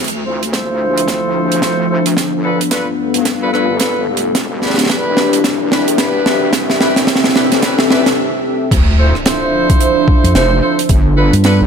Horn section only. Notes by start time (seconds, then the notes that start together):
0.26 E4 F4 A4 C5
0.53 E4 F4 A4 C5
1.62 E4 F4 A4 C5
1.90 E4 F4 A4 C5
2.44 D4 F4 A4 B4
2.71 D4 F4 A4 B4
3.42 D4 F4 A4 B4
3.53 D4 F4 A4 B4
3.80 D4 F4 A4 B4
4.62 D4 E4 G4 B4
4.89 D4 E4 G4 B4
5.71 D4 E4 G4 B4
5.99 D4 E4 G4 B4
6.80 D4 E4 G4 B4
7.35 D4 E4 G4 B4
7.62 D4 E4 G4 B4
7.90 D4 E4 G4 B4
8.99 E4 F4 A4 C5
9.26 E4 F4 A4 C5
10.35 E4 F4 A4 C5
10.62 E4 F4 A4 C5
11.17 D4 F4 A4 B4
11.44 D4 F4 A4 B4